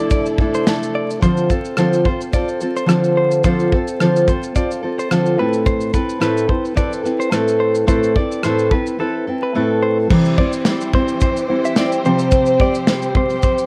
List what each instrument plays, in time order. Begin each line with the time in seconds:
Already playing: string section C3 F3 E4 A4 D5, steel-string acoustic guitar A3 D4 E4 A4, clean electric guitar D5
0.11 clean electric guitar D5, kick, shaker
0.26 shaker
0.38 steel-string acoustic guitar A3 D4 E4 A4, kick
0.54 clean electric guitar C5, shaker
0.67 steel-string acoustic guitar A3 D4 E4 A4, snare, shaker
0.83 shaker
0.95 clean electric guitar D5
1.10 shaker
1.22 steel-string acoustic guitar D3 F3 C4 F4 A4 C5, clean electric guitar C5, kick, shaker
1.37 shaker
1.50 steel-string acoustic guitar C4 F4 A4 C5, clean electric guitar A4, kick, shaker
1.65 shaker
1.77 steel-string acoustic guitar D3 F3 C4 F4 A4 C5, clean electric guitar A4, cross-stick, shaker
1.93 shaker
2.05 steel-string acoustic guitar C4 F4 A4 C5, clean electric guitar C5, kick
2.21 shaker
2.33 steel-string acoustic guitar C4 F4 A4 C5, clean electric guitar D5, kick, shaker
2.48 shaker
2.61 steel-string acoustic guitar C4 F4 A4 C5, shaker
2.77 clean electric guitar C5, shaker
2.86 steel-string acoustic guitar D3 F3 C4 F4 A4 C5, cross-stick, shaker
3.04 shaker
3.17 clean electric guitar C5
3.31 shaker
3.44 steel-string acoustic guitar D3 F3 C4 F4 A4 C5, clean electric guitar C5, kick, shaker
3.59 shaker
3.72 steel-string acoustic guitar C4 F4 A4 C5, clean electric guitar A4, kick
3.87 shaker
4.00 steel-string acoustic guitar D3 F3 C4 F4 A4 C5, clean electric guitar A4, cross-stick, shaker
4.16 shaker
4.28 steel-string acoustic guitar C4 F4 A4 C5, clean electric guitar C5, kick, shaker
4.43 shaker
4.54 steel-string acoustic guitar C4 F4 A4 C5, clean electric guitar D5, kick, shaker
4.71 shaker
4.82 steel-string acoustic guitar C4 F4 A4 C5
4.99 clean electric guitar C5, shaker
5.11 steel-string acoustic guitar D3 F3 C4 F4 A4 C5, cross-stick, shaker
5.26 shaker
5.39 steel-string acoustic guitar A2 A3 C4 E4 A4 B4, clean electric guitar B4
5.53 shaker
5.66 clean electric guitar C5, kick, shaker
5.81 shaker
5.93 steel-string acoustic guitar C4 E4 A4 B4, clean electric guitar B4, kick, shaker
6.09 shaker
6.20 steel-string acoustic guitar A2 A3 C4 E4 A4 B4, clean electric guitar B4, cross-stick, shaker
6.38 shaker
6.47 steel-string acoustic guitar C4 E4 A4 B4, clean electric guitar C5, kick
6.65 shaker
6.75 steel-string acoustic guitar C4 E4 A4 B4, clean electric guitar D5, kick, shaker
6.93 shaker
7.03 steel-string acoustic guitar C4 E4 A4 B4, cross-stick, shaker
7.20 clean electric guitar C5, shaker
7.31 steel-string acoustic guitar A2 A3 C4 E4 A4 B4, cross-stick, shaker
7.48 shaker
7.60 clean electric guitar C5
7.75 shaker
7.87 steel-string acoustic guitar A2 A3 C4 E4 A4 B4, clean electric guitar C5, kick, shaker
8.03 shaker
8.16 steel-string acoustic guitar C4 E4 A4 B4, clean electric guitar D5, kick
8.32 shaker
8.43 steel-string acoustic guitar A2 A3 C4 E4 A4 B4, clean electric guitar C5, cross-stick, shaker
8.59 shaker
8.71 steel-string acoustic guitar C4 E4 A4 B4, clean electric guitar B4, kick
8.87 shaker
8.99 steel-string acoustic guitar C4 E4 A4 B4, clean electric guitar A4
9.27 steel-string acoustic guitar C4 E4 A4 B4
9.43 clean electric guitar B4
9.54 steel-string acoustic guitar A2 A3 C4 E4 A4 B4
9.82 clean electric guitar C5
10.09 steel-string acoustic guitar C3 E3 G3 C4 E4 C5, string section E3 C4 G4 C5, kick, crash
10.25 shaker
10.38 steel-string acoustic guitar G3 C4 E4 C5, clean electric guitar D5, kick
10.53 shaker
10.65 steel-string acoustic guitar G3 C4 E4 C5, snare, shaker
10.81 shaker
10.93 steel-string acoustic guitar G3 C4 E4 C5, clean electric guitar C5, kick
11.08 shaker
11.21 clean electric guitar C5, kick, shaker
11.37 shaker
11.48 steel-string acoustic guitar G3 C4 E4 C5
11.65 clean electric guitar E5, shaker
11.76 steel-string acoustic guitar G3 C4 E4 C5, clean electric guitar D5, snare, shaker
11.92 shaker
12.05 string section C3 F3, steel-string acoustic guitar C3 F3 G3 C4 G4 C5, clean electric guitar C5, shaker
12.19 shaker
12.32 kick, shaker
12.46 shaker
12.60 steel-string acoustic guitar G3 C4 G4 C5, clean electric guitar D5, kick
12.75 shaker
12.87 steel-string acoustic guitar G3 C4 G4 C5, snare, shaker
13.02 shaker
13.15 steel-string acoustic guitar G3 C4 G4 C5, clean electric guitar C5, kick
13.30 shaker
13.42 clean electric guitar C5, kick, shaker
13.58 shaker